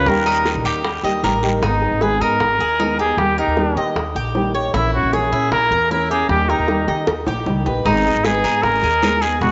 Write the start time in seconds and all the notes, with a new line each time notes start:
Already playing: A#4
0.06 D#2 D#3 G3 A#3 D#4 G4 A#4, high bongo, long guiro
0.26 D#4, high bongo
0.45 high bongo, short guiro
0.55 A#1
0.64 D#2 G4, short guiro
0.84 muted nylon-string guitar stroke, high bongo, long guiro
1.03 D#2 G3 A#3 D#4 G4 D#5, high bongo
1.23 A1 G3 A#3 D#4 G4 A#4, high bongo, low bongo, short guiro
1.43 G3 A#3 D#4 G4, high bongo, short guiro
1.62 G#1 D#3 G#3 B3 D#4 G#4, high bongo
1.82 B3 D#4 G#4, high bongo
1.91 G#1
2.01 D#3 G#3 B3 D#4 G#4 B4, high bongo
2.21 G#2 B3 D#4 A#4
2.40 G#1, muted nylon-string guitar stroke, high bongo
2.59 D#2 G#4, high bongo
2.79 D#3 G#3 B3 D#4 G#4, high bongo, low bongo
2.98 B3 D#4 G4 G#4, high bongo
3.17 D#2 D#3 G3 A#3 D#4 G4, high bongo
3.38 A#3 D#4 G4 A#4, high bongo
3.47 D#2
3.57 D#3 G3 A#3 D#4 G4, high bongo
3.76 D#3 A#3 D#4 G4 D#5
3.96 D#2, muted nylon-string guitar stroke, high bongo
4.15 A#1 G4, high bongo
4.35 D#3 G3 A#3 D#4 G4, high bongo, low bongo
4.54 A#3 D#4 G4 C#5, high bongo
4.74 A#1 E3 A#3 C#4 E4, high bongo
4.93 A#3 C#4 E4 F#4, high bongo
5.03 A#1
5.13 E3 A#3 C#4 E4 G#4 C#5, high bongo
5.32 A#2 A#3 C#4 E4
5.51 A#1 A#4, muted nylon-string guitar stroke, high bongo
5.71 E2 A#4, high bongo
5.90 E3 A#3 C#4 E4 A#4, high bongo, low bongo
6.10 A#3 C#4 E4 G4 G#4, high bongo
6.29 D#2 D#3 G3 A#3 D#4 G4, high bongo
6.49 A#3 D#4 G4 A#4, high bongo
6.58 D#2
6.68 D#3 G3 A#3 D#4 G4, high bongo
6.88 D#3 A#3 D#4 G4 D#5, high bongo
7.07 D#2, muted nylon-string guitar stroke, high bongo
7.26 A#1 G4, low bongo
7.46 C#2 D#3 G3 A#3 D#4 G4, low bongo
7.66 A#1 A#3 D#4 G4 B4, low bongo
7.85 G#1 D#3 G#3 B3 D#4 G#4, high bongo, long guiro
8.05 B3 D#4 G#4, high bongo
8.14 G#1
8.24 D#3 G#3 B3 D#4 G#4 B4, high bongo, short guiro
8.44 G#2 B3 D#4 G#4, short guiro
8.63 G#1 A#4, muted nylon-string guitar stroke, high bongo, long guiro
8.83 D#2 G#4, high bongo
9.02 D#3 G#3 B3 D#4 G#4, high bongo, low bongo, short guiro
9.22 B3 D#4 G#4, high bongo, short guiro
9.41 E1 B2 E3 G#3 B3 F#4, high bongo, long guiro